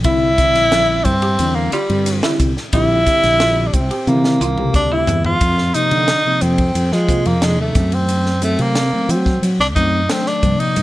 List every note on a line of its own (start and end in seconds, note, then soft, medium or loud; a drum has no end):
0.04 0.56 C2 loud
0.04 0.28 D3 medium
0.04 0.29 G3 medium
0.04 0.29 C4 medium
0.04 0.32 E4 medium
0.04 0.29 E4 loud
0.04 1.06 E4 loud
0.04 kick loud
0.04 hi-hat pedal medium
0.04 ride medium
0.38 1.10 D3 medium
0.38 1.10 G3 medium
0.38 1.10 C4 medium
0.38 1.11 E4 medium
0.38 kick medium
0.38 snare soft
0.38 hi-hat pedal medium
0.38 ride medium
0.55 1.02 A#1 medium
0.55 snare soft
0.55 ride medium
0.71 0.99 F3 medium
0.71 snare loud
0.71 hi-hat pedal medium
0.71 ride medium
1.04 1.36 G2 medium
1.04 1.57 C4 medium
1.04 kick medium
1.04 hi-hat pedal medium
1.04 ride medium
1.22 1.50 G4 medium
1.22 ride medium
1.39 1.70 E2 medium
1.39 1.75 D3 medium
1.39 1.75 G3 medium
1.39 1.75 C4 medium
1.39 1.76 D4 medium
1.39 hi-hat pedal medium
1.39 ride medium
1.55 1.72 A#3 medium
1.72 2.36 G3 medium
1.72 2.01 F4 medium
1.72 muted fretless electric bass stroke soft
1.72 hi-hat pedal medium
1.72 ride medium
1.90 2.20 G2 medium
1.90 2.49 D3 medium
1.90 2.49 G3 medium
1.90 2.49 C4 medium
1.90 2.50 G4 medium
1.90 ride medium
2.06 snare soft
2.06 hi-hat pedal medium
2.06 ride medium
2.23 2.51 E4 medium
2.23 snare loud
2.40 2.55 C2 medium
2.40 kick medium
2.40 hi-hat pedal medium
2.40 ride medium
2.57 snare soft
2.73 3.04 A#1 medium
2.73 2.97 D3 medium
2.73 2.98 G3 medium
2.73 2.98 C4 medium
2.73 3.01 E4 medium
2.73 3.69 E4 loud
2.73 2.98 G4 loud
2.73 kick loud
2.73 hi-hat pedal medium
2.73 ride medium
3.06 3.77 D3 medium
3.06 3.78 G3 medium
3.06 3.78 C4 medium
3.06 3.78 G4 medium
3.06 kick medium
3.06 snare soft
3.06 hi-hat pedal medium
3.06 ride medium
3.23 3.70 A#1 medium
3.23 snare soft
3.23 ride medium
3.40 3.68 F4 medium
3.40 snare loud
3.40 hi-hat pedal medium
3.40 ride medium
3.67 3.75 D4 medium
3.73 3.89 C2 medium
3.73 4.09 C4 medium
3.73 kick medium
3.73 hi-hat pedal medium
3.73 ride medium
3.91 4.18 G4 medium
3.91 ride medium
4.07 4.38 C3 loud
4.07 4.43 D3 medium
4.07 4.43 G3 medium
4.07 4.75 A#3 medium
4.07 4.43 C4 medium
4.07 4.43 E4 medium
4.07 hi-hat pedal medium
4.07 high tom medium
4.24 snare medium
4.41 4.71 C2 medium
4.41 4.69 F4 medium
4.41 hi-hat pedal medium
4.58 5.17 D3 medium
4.58 5.17 G3 medium
4.58 5.17 C4 medium
4.58 5.17 G4 medium
4.58 mid tom medium
4.74 5.04 D2 medium
4.74 4.94 D4 medium
4.74 kick medium
4.74 hi-hat pedal medium
4.92 5.19 E4 medium
4.92 5.25 E4 medium
5.07 5.38 E2 medium
5.07 floor tom medium
5.07 hi-hat pedal medium
5.25 5.76 F4 medium
5.25 floor tom medium
5.41 5.71 F2 medium
5.41 kick medium
5.41 hi-hat pedal medium
5.41 ride medium
5.58 snare soft
5.74 6.10 C3 medium
5.74 6.10 F3 medium
5.74 6.11 A#3 medium
5.74 6.43 D#4 medium
5.74 6.11 D#4 medium
5.74 hi-hat pedal medium
5.74 ride medium
5.91 6.22 D3 medium
5.91 ride medium
6.08 snare loud
6.08 hi-hat pedal medium
6.08 ride medium
6.25 6.61 C3 medium
6.25 6.61 F3 medium
6.25 6.61 A#3 medium
6.25 6.61 C4 medium
6.41 6.72 F2 medium
6.41 6.94 C4 medium
6.41 hi-hat pedal medium
6.41 ride medium
6.58 kick medium
6.58 ride medium
6.75 6.91 F2 medium
6.75 6.84 A#3 soft
6.75 6.84 D4 soft
6.75 hi-hat pedal medium
6.75 ride medium
6.92 7.23 F3 medium
6.92 7.28 G#3 medium
6.92 snare soft
7.08 7.32 C3 medium
7.08 7.32 F3 medium
7.08 7.33 A#3 medium
7.08 7.33 F4 medium
7.08 kick medium
7.08 hi-hat pedal medium
7.08 ride medium
7.26 7.60 F2 medium
7.26 7.46 A#3 medium
7.26 ride medium
7.42 7.75 C3 medium
7.42 7.75 F3 medium
7.42 7.60 G#3 medium
7.42 7.76 A#3 medium
7.42 7.76 D#4 medium
7.42 snare loud
7.42 hi-hat pedal medium
7.42 ride medium
7.60 7.74 D#2 medium
7.60 7.96 A3 medium
7.75 8.55 F#2 medium
7.75 8.29 D#3 medium
7.75 8.30 F#3 medium
7.75 8.30 A3 medium
7.75 8.30 C4 medium
7.75 kick medium
7.75 hi-hat pedal medium
7.75 ride medium
7.92 8.43 C4 medium
7.92 ride medium
8.09 hi-hat pedal medium
8.09 ride medium
8.26 snare soft
8.42 8.78 D#3 medium
8.42 8.78 F#3 medium
8.42 8.78 A3 medium
8.42 8.63 A3 medium
8.42 8.78 C4 medium
8.42 hi-hat pedal medium
8.42 ride medium
8.59 8.90 C3 medium
8.59 9.12 A#3 medium
8.59 ride medium
8.75 snare medium
8.75 hi-hat pedal medium
8.75 ride medium
8.93 9.28 D#3 medium
8.93 9.28 F#3 medium
8.93 9.29 A3 medium
8.93 9.29 C4 medium
8.93 muted fretless electric bass stroke soft
9.09 9.39 F#3 medium
9.09 9.46 C4 medium
9.09 hi-hat pedal medium
9.09 ride medium
9.26 kick medium
9.26 snare soft
9.42 9.58 F#3 medium
9.42 9.51 A3 soft
9.42 9.52 C4 soft
9.42 hi-hat pedal medium
9.42 ride medium
9.59 9.76 C2 medium
9.59 9.68 D4 medium
9.59 snare soft
9.75 10.06 F#2 medium
9.75 10.00 D#3 medium
9.75 10.00 F#3 medium
9.75 10.00 A3 medium
9.75 10.00 C4 medium
9.75 10.13 D#4 medium
9.75 kick medium
9.75 hi-hat pedal medium
9.75 ride medium
10.09 10.43 D#3 medium
10.09 10.44 F#3 medium
10.09 10.44 A3 medium
10.09 10.29 C4 medium
10.09 10.44 D4 medium
10.09 snare loud
10.09 hi-hat pedal medium
10.09 ride medium
10.26 10.62 D4 medium
10.26 snare soft
10.43 10.59 G2 medium
10.43 10.82 C3 medium
10.43 10.82 F3 medium
10.43 10.82 A#3 medium
10.43 10.82 D5 medium
10.43 kick medium
10.43 hi-hat pedal medium
10.43 ride medium
10.60 10.82 D#4 medium
10.60 muted fretless electric bass stroke soft
10.60 ride medium
10.76 10.82 G2 medium
10.76 hi-hat pedal medium
10.76 ride medium